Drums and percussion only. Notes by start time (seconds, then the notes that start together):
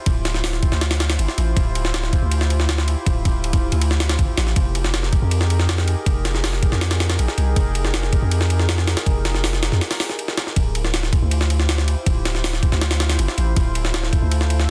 0.06 kick, ride
0.25 snare, ride
0.34 snare
0.44 snare, open hi-hat
0.53 snare
0.63 kick, ride
0.72 snare
0.81 snare, ride
0.91 snare, ride
1.00 snare, ride
1.10 snare, ride
1.19 ride
1.28 snare
1.38 ride
1.57 kick, ride
1.75 ride
1.85 snare
1.94 snare, ride
2.03 snare
2.13 kick, ride
2.31 ride
2.41 snare
2.50 ride
2.60 snare
2.69 snare, ride
2.78 snare
2.88 ride
3.06 kick, ride
3.25 kick, ride
3.44 ride
3.53 kick, ride
3.72 ride
3.81 ride
3.91 snare
4.00 snare, ride
4.09 snare, ride
4.19 kick, ride
4.38 snare, ride
4.47 snare
4.56 kick, ride
4.75 ride
4.84 snare
4.94 snare, ride
5.03 snare
5.13 kick, ride
5.31 ride
5.41 snare
5.50 ride
5.60 snare
5.69 snare, ride
5.78 snare
5.88 ride
6.06 kick, ride
6.25 snare, ride
6.35 snare
6.44 snare, open hi-hat
6.53 snare
6.63 kick, ride
6.72 snare
6.81 snare, ride
6.91 snare, ride
7.00 snare, ride
7.10 snare, ride
7.19 ride
7.28 snare
7.38 ride
7.56 kick, ride
7.75 ride
7.85 snare
7.94 snare, ride
8.03 snare
8.13 kick, ride
8.31 ride
8.41 snare
8.50 ride
8.59 snare
8.69 snare, ride
8.78 snare
8.87 snare, ride
8.97 snare, ride
9.06 kick, ride
9.25 snare, ride
9.35 snare
9.44 snare, open hi-hat
9.53 snare
9.63 snare, ride
9.72 snare
9.81 snare, ride
9.91 snare, open hi-hat
10.00 snare, open hi-hat
10.09 snare
10.19 ride
10.28 snare
10.38 snare, ride
10.47 snare
10.56 kick, ride
10.75 ride
10.85 snare
10.94 snare, ride
11.03 snare
11.13 kick, ride
11.31 ride
11.41 snare
11.50 ride
11.60 snare
11.69 snare, ride
11.78 snare
11.88 ride
12.06 kick, ride
12.25 snare, ride
12.35 snare
12.44 snare, open hi-hat
12.53 snare
12.63 kick, ride
12.72 snare
12.81 snare, ride
12.91 snare, ride
13.00 snare, ride
13.09 snare, ride
13.19 ride
13.28 snare
13.38 ride
13.56 kick, ride
13.75 ride
13.85 snare
13.94 snare, ride
14.03 snare
14.13 kick, ride
14.31 ride
14.41 snare
14.50 ride
14.60 snare